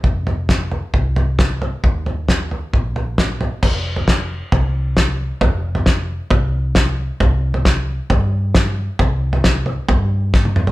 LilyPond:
<<
  \new Staff \with { instrumentName = "Picked electric bass" } { \clef bass \time 4/4 \key f \minor \tempo 4 = 134 f,,2 c,2 | ees,2 bes,,2 | f,,2 c,2 | f,,2 c,2 |
c,2 g,2 | c,2 g,2 | }
  \new DrumStaff \with { instrumentName = "Drums" } \drummode { \time 4/4 <bd tomfh>8 tomfh8 <bd sn tomfh>8 tomfh8 <bd tomfh>8 tomfh8 <bd sn tomfh>8 tomfh8 | <bd tomfh>8 tomfh8 <bd sn tomfh>8 tomfh8 <bd tomfh>8 tomfh8 <bd sn tomfh>8 tomfh8 | <cymc bd tomfh>8. tomfh16 <bd sn>4 <bd tomfh>4 <bd sn>4 | <bd tomfh>8. tomfh16 <bd sn>4 <bd tomfh>4 <bd sn>4 |
<bd tomfh>8. tomfh16 <bd sn>4 <bd tomfh>4 <bd sn>4 | <bd tomfh>8. tomfh16 <bd sn>8 tomfh8 <bd tomfh>4 <bd sn>16 tommh16 toml16 tomfh16 | }
>>